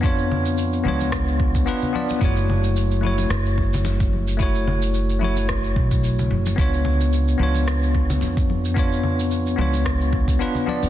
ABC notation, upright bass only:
X:1
M:4/4
L:1/16
Q:"Swing 16ths" 1/4=110
K:F#m
V:1 name="Upright bass" clef=bass
^E,,6 C,,6 z4 | F,,,8 F,,,8- | F,,,8- F,,,2 B,,,4 F,,,2 | C,,6 C,,6 ^E,,4- |
^E,,6 C,,6 z3 E,, |]